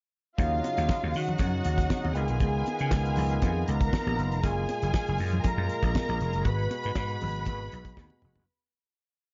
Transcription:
0.38 slap bass D#2, tonewheel organ C#3 F#3 D#4, string section F4 F5, kick, closed hi-hat
0.64 closed hi-hat, muted conga
0.77 slap bass D#2, closed hi-hat
0.89 kick, snare, high conga
1.03 slap bass D#2
1.14 slap bass D#3, string section F#4 F#5, open hi-hat
1.27 closed hi-hat, low conga
1.38 slap bass F#2, kick, closed hi-hat, muted conga, low conga
1.64 slap bass D#2, closed hi-hat
1.78 kick, snare, closed hi-hat
1.90 kick, snare, high conga
2.04 slap bass D#2, high conga
2.15 slap bass C#2, tonewheel organ D#3 B3 F4, string section G#4 G#5, closed hi-hat
2.28 slap bass B1, closed hi-hat
2.40 slap bass C#2, kick, closed hi-hat, muted conga
2.66 closed hi-hat, muted conga
2.79 slap bass C#3, closed hi-hat
2.91 slap bass C#2, kick, snare, high conga
3.05 closed hi-hat
3.16 slap bass C#2, open hi-hat, low conga
3.30 closed hi-hat
3.42 slap bass F2, kick, closed hi-hat, muted conga
3.68 slap bass C#2, string section A#4 A#5, closed hi-hat
3.81 kick, closed hi-hat
3.93 kick, snare, high conga
4.07 slap bass A#1, closed hi-hat, high conga
4.19 slap bass F#1, closed hi-hat
4.32 slap bass F1, closed hi-hat
4.43 slap bass F#1, tonewheel organ A#2 G#3 F4, string section G#4 G#5, kick, closed hi-hat, muted conga
4.69 closed hi-hat, muted conga
4.82 slap bass F#1, closed hi-hat
4.94 kick, snare, high conga
5.07 slap bass F#1, closed hi-hat
5.18 slap bass F#2, open hi-hat
5.31 closed hi-hat, low conga
5.44 string section A#4 A#5, muted slap bass stroke, kick, closed hi-hat, muted conga, low conga
5.57 slap bass F#2
5.69 closed hi-hat
5.83 slap bass A#1, kick, closed hi-hat
5.95 kick, snare, high conga
6.09 slap bass A#1, closed hi-hat, high conga
6.20 slap bass F1, closed hi-hat
6.33 slap bass F#1, closed hi-hat
6.45 slap bass G#1, tonewheel organ B2 F#4, string section B4 B5, kick, closed hi-hat, muted conga
6.71 closed hi-hat, muted conga
6.83 slap bass G#2, closed hi-hat
6.95 slap bass G#2, kick, snare, high conga
7.09 closed hi-hat
7.21 slap bass G#1, open hi-hat, low conga
7.34 closed hi-hat
7.45 slap bass G#1, kick, closed hi-hat, muted conga
7.72 slap bass B1, closed hi-hat
7.85 kick, closed hi-hat
7.97 slap bass D#2, kick, snare, high conga
8.10 high conga
8.22 slap bass F1, mid tom
8.36 slap bass F#1, floor tom

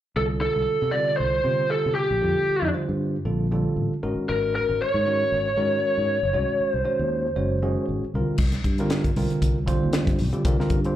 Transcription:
0.16 fingered electric bass C2, tine electric piano D3 G3 C4 F4 A4, lead electric guitar A4
0.41 lead electric guitar A4
0.56 fingered electric bass C2
0.82 fingered electric bass C3
0.91 tine electric piano D3 G3 C4 F4 A4, lead electric guitar D5
1.17 fingered electric bass C2, lead electric guitar C5
1.44 fingered electric bass C3, tine electric piano D3 G3 C4 F4 G4
1.70 lead electric guitar A4
1.86 fingered electric bass C3
1.95 lead electric guitar G4
2.11 fingered electric bass A#1
2.21 fingered electric bass F2, tine electric piano D3 G3 C4 F4 A4
2.49 muted fingered electric bass stroke
2.62 fingered electric bass F2
2.73 tine electric piano D3 G3 C4 F4 C5
2.89 fingered electric bass G2
3.25 fingered electric bass A#1, tine electric piano D3 G3 C4 F4 A4
3.51 tine electric piano D3 G3 C4 F4 A4
3.76 fingered electric bass A1
4.03 fingered electric bass G#1, tine electric piano D#3 G#3 C#4 F#4 A#4
4.18 muted fingered electric bass stroke
4.29 fingered electric bass G#1, lead electric guitar A#4
4.55 lead electric guitar A#4
4.69 fingered electric bass G#1
4.81 lead electric guitar C#5
4.94 fingered electric bass G#2
5.06 tine electric piano D#3 G#3 C#4 F#4 A#4
5.32 fingered electric bass G#1
5.57 fingered electric bass G#2, tine electric piano D#3 G#3 C#4 F#4 A#4
5.98 fingered electric bass G#2
6.23 fingered electric bass F#1
6.33 fingered electric bass C2, tine electric piano D#3 G#3 C#4 F#4 C#5
6.60 muted fingered electric bass stroke
6.70 lead electric guitar C5
6.74 fingered electric bass C2
6.85 tine electric piano D#3 G#3 C#4 F#4 C#5
6.99 fingered electric bass D#2
7.35 fingered electric bass F#1, tine electric piano D#3 G#3 C#4 F#4 C#5
7.62 tine electric piano D#3 G#3 C#4 F#4 G#4
7.89 fingered electric bass G#1
8.14 fingered electric bass C2, tine electric piano D3 G3 C4 F4 A#4
8.27 muted fingered electric bass stroke
8.38 fingered electric bass C2, kick, crash
8.52 snare, closed hi-hat
8.64 fingered electric bass G2, kick, closed hi-hat
8.78 tine electric piano D3 G3 C4 F4 A#4, closed hi-hat
8.90 snare, closed hi-hat
9.04 kick, closed hi-hat
9.16 fingered electric bass C2, tine electric piano D3 G3 C4 F4 A#4, open hi-hat
9.30 muted fingered electric bass stroke, closed hi-hat
9.42 fingered electric bass C2, kick, closed hi-hat
9.67 tine electric piano D3 G3 C4 F4 C5, kick, closed hi-hat
9.83 fingered electric bass D#2
9.93 snare, closed hi-hat
10.07 fingered electric bass G2, kick, snare, closed hi-hat
10.19 fingered electric bass C2, open hi-hat
10.33 tine electric piano D3 G3 C4 F4 G4, closed hi-hat
10.45 fingered electric bass C2, tine electric piano D3 G3 C4 F4 A#4, kick, closed hi-hat
10.59 tine electric piano D3 G3 C4 F4 A#4, snare
10.70 fingered electric bass G2, kick, closed hi-hat
10.85 tine electric piano D3 G3 C4 F4 C5, closed hi-hat

